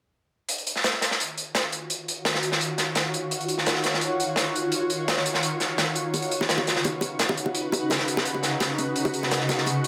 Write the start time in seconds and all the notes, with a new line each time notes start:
0.49 D#3 F4 F#4 C#5, closed hi-hat
0.58 closed hi-hat
0.67 closed hi-hat
0.76 snare
0.84 snare, closed hi-hat
0.93 snare
1.01 snare, closed hi-hat
1.11 snare
1.20 closed hi-hat
1.38 closed hi-hat
1.55 snare, closed hi-hat
1.72 closed hi-hat
1.90 closed hi-hat
2.08 closed hi-hat
2.25 snare, closed hi-hat
2.34 snare
2.43 closed hi-hat
2.52 snare
2.61 closed hi-hat
2.78 snare, closed hi-hat
2.95 snare, closed hi-hat
3.14 closed hi-hat
3.31 closed hi-hat
3.40 closed hi-hat
3.48 closed hi-hat
3.58 snare
3.66 snare, closed hi-hat
3.75 snare
3.84 snare, closed hi-hat
3.94 snare
4.01 closed hi-hat
4.20 closed hi-hat
4.36 snare, closed hi-hat
4.56 closed hi-hat
4.72 closed hi-hat
4.90 closed hi-hat
5.08 snare, closed hi-hat
5.17 snare
5.26 closed hi-hat
5.34 snare
5.43 closed hi-hat
5.60 snare, closed hi-hat
5.78 snare, closed hi-hat
5.96 closed hi-hat
6.13 C#3 D#4 F#4 B4, closed hi-hat, high bongo
6.22 closed hi-hat
6.31 closed hi-hat
6.41 snare, high bongo
6.49 snare, closed hi-hat
6.57 snare, high bongo
6.67 snare, closed hi-hat
6.76 snare
6.84 closed hi-hat, high bongo
7.01 closed hi-hat, high bongo
7.19 snare, closed hi-hat
7.29 high bongo
7.37 closed hi-hat
7.46 high bongo
7.55 closed hi-hat
7.72 closed hi-hat, high bongo
7.90 snare, closed hi-hat, high bongo
7.99 snare
8.08 closed hi-hat
8.17 snare, high bongo
8.25 closed hi-hat
8.34 high bongo
8.43 snare, closed hi-hat
8.60 snare, closed hi-hat, high bongo
8.78 closed hi-hat, high bongo
8.96 C#5, closed hi-hat
9.05 closed hi-hat, high bongo
9.14 closed hi-hat
9.23 snare, high bongo
9.31 snare, closed hi-hat
9.40 snare
9.49 snare, closed hi-hat, high bongo
9.58 snare
9.66 closed hi-hat, high bongo
9.84 closed hi-hat